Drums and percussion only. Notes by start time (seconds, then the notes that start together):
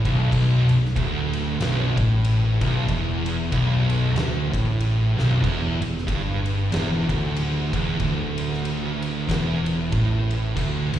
0.05 kick, ride
0.32 kick, crash
0.69 ride
0.85 snare
0.96 kick, ride
1.33 ride
1.61 snare, ride
1.97 kick, ride
2.25 ride
2.61 kick, ride
2.88 kick, ride
3.26 ride
3.52 kick, ride
3.90 ride
4.16 snare, ride
4.54 kick, ride
4.80 ride
5.19 snare
5.31 floor tom
5.44 kick, crash
5.82 ride
5.97 snare
6.08 kick, ride
6.46 ride
6.72 snare, ride
7.09 kick, ride
7.36 ride
7.73 kick, ride
8.00 kick, ride
8.38 ride
8.53 snare
8.65 ride
9.02 ride
9.29 kick, snare, ride
9.66 ride
9.92 kick, ride
10.31 ride
10.57 kick, crash
10.94 ride